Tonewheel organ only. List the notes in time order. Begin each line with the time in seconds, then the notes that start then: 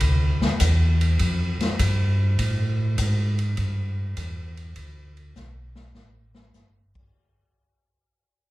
0.01 D2
0.42 D2
0.60 E2
1.20 F2
1.61 F2
1.80 G2
2.39 A2
2.98 G#2
3.58 G2
4.17 E2
4.76 D2
5.36 B1
5.95 A1
6.54 G1